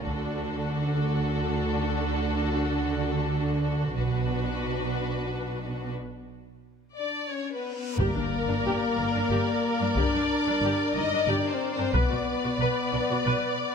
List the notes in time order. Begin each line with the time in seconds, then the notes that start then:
0.05 D2 D3 D4 F#4 A4, taiko
3.97 B1 B2 D4 F#4 B4, taiko
5.97 reverse cymbal
6.97 D4 D5
7.30 C#4 C#5
7.53 B3 B4
7.74 B3 B4
7.97 G1 G2 A#3 G4 A#4 D5, taiko, impact
8.15 G2 D4
8.48 G2 D4
8.65 G1 G2 G4
8.98 G1 G2 A#3
9.15 G2 D4
9.30 G1 G2 G4
9.80 G2 D4
9.96 G1 G2 D4 G4 D5, taiko
10.14 G2 D4
10.47 G2 D4
10.62 G1 G2 G4
10.95 G1 G2 A#3 D#4 D#5
11.12 G2 D4
11.27 G1 G2 D4 G4 D5
11.49 C5
11.54 C4
11.72 C4 C5
11.77 G2 D4
11.93 B1 B2 B3 B4 D5, taiko
12.10 B2 F#4
12.44 B2 F#4
12.58 B1 B2 B4
12.93 B1 B2 D4
13.10 B2 F#4
13.24 B1 B2 B4